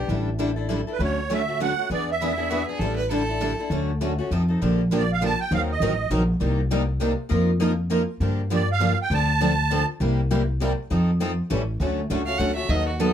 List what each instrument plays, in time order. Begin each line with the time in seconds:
0.08 upright bass A1, steel-string acoustic guitar D3 G3 D4 E4 A4
0.39 steel-string acoustic guitar D3 G3 D4 E4 A4
0.56 steel-string acoustic guitar D4 E4 A4
0.69 steel-string acoustic guitar D3 G3 D4 E4 A4
0.87 steel-string acoustic guitar D4 E4 A4
0.92 accordion B4
0.99 upright bass D2, steel-string acoustic guitar D3 F#3 A3 C#4 F#4 A4
1.03 accordion C#5
1.30 steel-string acoustic guitar D3 F#3 A3 C#4 F#4 A4, accordion E5
1.48 steel-string acoustic guitar A3 C#4 F#4
1.60 steel-string acoustic guitar D3 F#3 A3 C#4 F#4 A4, accordion F#5
1.79 steel-string acoustic guitar A3 C#4 F#4
1.90 upright bass E2, steel-string acoustic guitar E3 B3 D4 G#4 B4, accordion D5
2.11 accordion E5
2.22 steel-string acoustic guitar E3 B3 D4 G#4 B4
2.36 steel-string acoustic guitar B3 D4 G#4, violin E4
2.50 steel-string acoustic guitar E3 B3 D4 G#4 B4, violin F#4
2.66 steel-string acoustic guitar D4 G#4, violin G#4
2.70 steel-string acoustic guitar B3
2.78 upright bass A1, steel-string acoustic guitar D3 G3 D4 E4 A4, violin A4
2.96 violin B4
3.11 steel-string acoustic guitar D3 G3 D4 E4 A4, violin A4
3.29 steel-string acoustic guitar D4 E4 A4
3.41 steel-string acoustic guitar D3 G3 D4 E4 A4
3.59 steel-string acoustic guitar D4 E4 A4
3.70 upright bass D2, steel-string acoustic guitar D3 F#3 A3 C#4 F#4 A4
4.01 steel-string acoustic guitar D3 F#3 A3 C#4 F#4 A4
4.19 steel-string acoustic guitar A3 C#4 F#4
4.31 upright bass F2, steel-string acoustic guitar F3 C4 D#4 A4
4.48 steel-string acoustic guitar C4 D#4 A4
4.62 upright bass A#1, steel-string acoustic guitar D3 F3 A#3 D4 G4
4.92 steel-string acoustic guitar D3 F3 A#3 D4 G4
4.98 accordion D5
5.13 accordion F5
5.21 steel-string acoustic guitar D3 F3 A#3 D4 G4
5.25 accordion A5
5.40 accordion G5
5.51 upright bass D#2, steel-string acoustic guitar D#3 F#3 C4 D#4 A#4, accordion F5
5.71 accordion D#5
5.80 upright bass A1, steel-string acoustic guitar D#3 F#3 C4 D#4 A#4
6.10 upright bass A#1, steel-string acoustic guitar D#3 F#3 C4 D#4 A#4
6.40 upright bass C2, steel-string acoustic guitar C3 G3 A#3 D#4 G4
6.71 steel-string acoustic guitar C3 G3 A#3 D#4 G4
7.00 steel-string acoustic guitar C3 G3 A#3 D#4 G4
7.29 upright bass F2, steel-string acoustic guitar F3 A#3 D#4 F4 A#4
7.60 steel-string acoustic guitar F3 A#3 D#4 F4 A#4
7.90 steel-string acoustic guitar F3 A#3 D#4 F4 A#4
8.20 upright bass G2, steel-string acoustic guitar D3 F3 A#3 D4 G4
8.50 steel-string acoustic guitar D3 F3 A#3 D4 G4, accordion D5
8.72 accordion F5
8.80 steel-string acoustic guitar D3 F3 A#3 D4 G4
9.02 accordion G5
9.10 upright bass D2, steel-string acoustic guitar D3 F3 C4 D4 A4, accordion A5
9.41 steel-string acoustic guitar D3 F3 C4 D4 A4
9.71 steel-string acoustic guitar D3 F3 C4 D4 A4
10.00 upright bass C2, steel-string acoustic guitar C3 G3 A#3 E4 G4
10.31 steel-string acoustic guitar C3 G3 A#3 E4 G4
10.60 steel-string acoustic guitar C3 G3 A#3 E4 G4
10.90 upright bass F2, steel-string acoustic guitar F3 C4 D#4 A4
11.20 steel-string acoustic guitar F3 C4 D#4 A4
11.50 upright bass A1, steel-string acoustic guitar E3 G3 C#4 E4 A4
11.80 upright bass D2, steel-string acoustic guitar D3 F#3 A3 C#4 F#4 A4
12.10 upright bass C#2, steel-string acoustic guitar D3 F#3 A3 C#4 F#4 A4
12.26 steel-string acoustic guitar A3 C#4 F#4, violin F5
12.38 upright bass D2, steel-string acoustic guitar D3 F#3 A3 C#4 F#4 A4, violin F#5
12.56 steel-string acoustic guitar A3 C#4 F#4, violin E5
12.69 upright bass D#2, steel-string acoustic guitar D#3 F#3 B3 D#4 A4, violin D#5
12.88 violin F#4
13.00 steel-string acoustic guitar D#3 F#3 B3 D#4 A4, violin A4